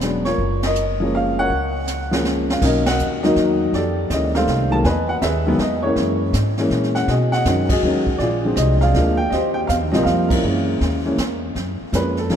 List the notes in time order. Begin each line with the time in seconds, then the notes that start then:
Already playing: E1
0.01 F#3 G#3 B3 D4, snare, hi-hat pedal
0.25 F4 A#4 C#5, snare
0.38 F#1, brush sweep, kick
0.63 A#4 D#5, snare, ride
0.75 hi-hat pedal
1.00 F3 G#3 A#3 C#4
1.15 F5
1.39 A#4 C#5 F#5
1.50 C#2, brush sweep, kick
1.87 snare, hi-hat pedal
2.11 F3 G#3 A#3 C#4, snare
2.25 snare
2.50 F5, snare
2.61 B1 D#3 F#3 A#3 C#4 F#4 A#4 D#5, brush sweep, kick, snare, crash
2.86 A#4 D#5 F#5, snare, ride
2.99 D#2, hi-hat pedal
3.23 D#3 F#3 A#3 D#4 F#4 A#4 D#5, snare
3.36 E2, kick, snare
3.73 F2 G4 A4 D5, brush sweep, kick, snare
4.10 D2 E3 G#3 A#3 C#4 D#5, kick, snare, hi-hat pedal
4.35 D#3 G3 A3 C4 A4 C5 F5, snare
4.47 C2, kick, snare
4.71 D#3 F#3 G#3 A#3 A5
4.84 E2 B4 D#5 G#5, brush sweep, kick, snare
5.09 F#5
5.22 D#2 G#4 B4 E5, kick, snare, hi-hat pedal
5.46 D#3 F#3 G#3 B3
5.59 E2 D#5, kick, snare
5.83 E3 G#3 A#3 C#4 E4 A#4 C#5
5.96 F#2, brush sweep, kick, snare
6.33 G#2, kick, snare, hi-hat pedal
6.57 E3 G#3 A#3 C#4, snare
6.70 A#2, kick, snare
6.83 snare
6.95 F#5, snare
7.08 B2 F#4 G#4 D#5, brush sweep, kick, snare
7.32 D#5 F#5, snare
7.45 F#2 D#3 F#3 G#3 C#4, kick, snare, hi-hat pedal
7.69 F#4 G#4 D#5, kick, ride
7.83 D#2 D#3 F#3 G#3 C#4
8.07 kick
8.18 A#1 F4 G#4 D5, brush sweep, kick, snare
8.44 D3 F3 G#3 C4
8.56 C2 D#5, kick, snare, hi-hat pedal
8.81 G#4 D5 F5, snare
8.94 D2 D3 F3 G#3 A#3, kick, snare
9.17 G5
9.30 D#2 G4 C5 D#5, brush sweep, kick, snare
9.54 G5
9.67 E2 F5, kick, snare, hi-hat pedal
9.81 D#2
9.92 C2 F3 G3 A#3 C4 D#5, snare
10.03 F2 F5, kick, snare
10.29 C#4 E4 A#4, kick, ride
10.43 F#2 E3 G#3 A#3 C#4, brush sweep
10.81 D#2, kick, snare
11.05 E3 G#3 A#3 C#4
11.18 E2, kick, snare, hi-hat pedal
11.55 F#2, brush sweep, kick, snare
11.81 muted upright bass stroke
11.92 F2 F3 G#3 A#3 C#4 B4, kick, snare, hi-hat pedal
12.17 A4, snare
12.29 C#2 F3 G#3 A#3 C#4 A#4, kick, snare